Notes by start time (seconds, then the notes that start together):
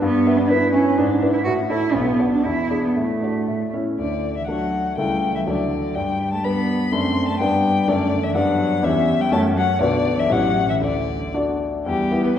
0.02 G2 B3
0.27 B3 E5
0.37 D4
0.48 E4 B4
0.73 C#4 E4 E5
0.97 G#2 D4
1.22 E4 B4 E5
1.33 E4
1.44 A2 F#4
1.69 E4 A4 C#5
1.94 B1 B3
2.19 D4 F#4 D5
2.32 D4
2.45 E2 E4
2.70 D4 G#4 D5
2.84 B3
2.96 A2 A3
3.22 D4 F#4 D5
3.48 A2
3.73 C#4 E4 C#5
3.98 D2 D3 D5
4.36 E3 E5
4.47 F#3 A3 D4 F#4 F#5
4.97 C#2 G3 A3 E4 A4 G5
5.34 E3 E5
5.47 D2 D3 F#3 D4 A4 D5
5.95 G2 G3 G5
6.32 A3 A5
6.44 G3 B3 D4 B4 B5
6.92 F#2 A3 C4 D4 D5 C6
7.28 A3 A5
7.39 G2 G3 B3 D4 D5 G5
7.88 F#2 D3 A3 D4 D5
8.23 E3 E5
8.35 G2 F#3 B3 D4 D5 F#5
8.83 E2 E3 C#4 G4 C#5 E5
9.19 G3 G5
9.31 F#2 A3 C#4 F#4 C#5 A5
9.56 F#3 F#5
9.79 B1 D3 D4 F#4 B4 D5
10.17 E3 E5
10.30 A1 F#3 E4 G4 C#5 F#5
10.67 E3 E5
10.80 D2 D3 D5
11.34 D4 F#4 D5
11.85 E2 G3 G4
12.11 B3 E4 G4
12.23 B3 B4
12.35 C4